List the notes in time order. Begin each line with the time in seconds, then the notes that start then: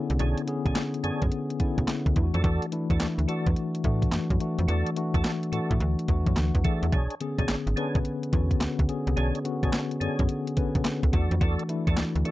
Already playing: D3 B3 C#4 E4 G#4 B4
0.10 C2, closed hi-hat
0.19 B1 D4 G#4 C#5, closed hi-hat
0.38 closed hi-hat
0.47 D3 B3 C#4 G#4, closed hi-hat
0.66 B1 D4 G#4 C#5, kick, closed hi-hat
0.75 snare, clap, closed hi-hat
0.94 closed hi-hat
1.03 F#2 D3 B3 C#4 D4 G#4 C#5, closed hi-hat
1.22 F#2, kick, closed hi-hat
1.32 closed hi-hat
1.50 closed hi-hat
1.59 B1 D3 B3 C#4 E4, kick, closed hi-hat
1.78 B1, kick, closed hi-hat
1.88 snare, clap, closed hi-hat
2.06 D2, kick, closed hi-hat
2.15 E2 E3 A3 D4 E4, kick, closed hi-hat
2.23 F#4
2.34 F2 F#4 A4 D5, closed hi-hat
2.44 E2 F#4 A4 D5, kick, closed hi-hat
2.62 closed hi-hat
2.72 E3 A3 D4 E4, closed hi-hat
2.90 E2 F#4 A4 D5, kick, closed hi-hat
3.00 D2, snare, clap, closed hi-hat
3.18 D2, closed hi-hat
3.28 E3 A3 D4 F#4 A4 D5, closed hi-hat
3.46 E2, kick, closed hi-hat
3.56 closed hi-hat
3.75 closed hi-hat
3.84 A2 E3 A3 D4 F#4, kick, closed hi-hat
4.02 kick, closed hi-hat
4.12 F#2, snare, clap, closed hi-hat
4.30 F#2, kick, closed hi-hat
4.40 E3 A3 D4 F#4, closed hi-hat
4.59 F2, closed hi-hat
4.68 E2 F#4 A4 D5, closed hi-hat
4.86 closed hi-hat
4.96 E3 A3 D4 F#4, closed hi-hat
5.14 E2 F#4 A4 D5, kick, closed hi-hat
5.24 snare, clap, closed hi-hat
5.43 closed hi-hat
5.52 A2 E3 A3 D4 F#4 A4 D5, closed hi-hat
5.71 A2, kick, closed hi-hat
5.80 D2, closed hi-hat
5.99 closed hi-hat
6.08 E2 E3 A3 D4 F#4, kick, closed hi-hat
6.26 F#2, kick, closed hi-hat
6.36 D2 F#5, snare, clap, closed hi-hat
6.55 E2, kick, closed hi-hat
6.64 E3 A3 D4 F#4 G#4 A4 D5 E5, kick, closed hi-hat
6.83 E2, closed hi-hat
6.92 B1 D4 G#4 C#5, kick, closed hi-hat
7.10 closed hi-hat
7.20 D3 B3 C#4 G#4, closed hi-hat
7.38 B1 D4 G#4 C#5, kick, closed hi-hat
7.48 G#1, snare, clap, closed hi-hat
7.67 G#1, closed hi-hat
7.76 D3 B3 C#4 D4 G#4 B4 C#5, closed hi-hat
7.95 B1, kick, closed hi-hat
8.05 closed hi-hat
8.23 closed hi-hat
8.32 E2 D3 B3 C#4 F#4, kick, closed hi-hat
8.51 kick, closed hi-hat
8.61 D2, snare, clap, closed hi-hat
8.79 D2, kick, closed hi-hat
8.88 D3 B3 C#4 G#4, closed hi-hat
9.07 C2, closed hi-hat
9.17 B1 D4 G#4 C#5, closed hi-hat
9.35 closed hi-hat
9.44 D3 B3 C#4 F#4, closed hi-hat
9.63 B1 D4 G#4 C#5, kick, closed hi-hat
9.73 snare, clap, closed hi-hat
9.91 closed hi-hat
10.00 F#2 D3 B3 C#4 D4 G#4 C#5, closed hi-hat
10.19 F#2, kick, closed hi-hat
10.29 closed hi-hat
10.47 closed hi-hat
10.56 B1 D3 B3 C#4 B4, kick, closed hi-hat
10.75 B1, kick, closed hi-hat
10.85 snare, clap, closed hi-hat
11.03 D2, kick, closed hi-hat
11.12 E2 E3 A3 D4 F#4 A4 D5, kick, closed hi-hat
11.31 F2, closed hi-hat
11.41 E2 F#4 A4 D5, kick, closed hi-hat
11.59 closed hi-hat
11.69 E3 A3 D4 E4, closed hi-hat
11.87 E2 F#4 A4 D5, kick, closed hi-hat
11.97 D2, snare, clap, closed hi-hat
12.15 D2, closed hi-hat
12.25 E3 A3 D4 F#4 A4 D5, closed hi-hat